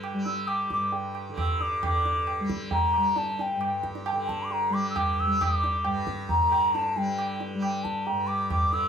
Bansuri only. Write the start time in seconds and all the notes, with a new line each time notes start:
0.26 E6
0.48 D6
0.73 D6
1.40 E6
1.62 D6
1.86 D6
2.73 A#5
3.18 A5
3.41 G5
4.07 G5 A5
4.28 A5
4.44 D6
4.52 A#5
4.74 D6
4.90 E6
4.97 D6
5.20 E6
5.43 D6
6.30 A#5
6.75 A5
6.97 G5
7.62 G5
7.84 A5
8.06 A#5
8.27 D6
8.52 D6
8.73 E6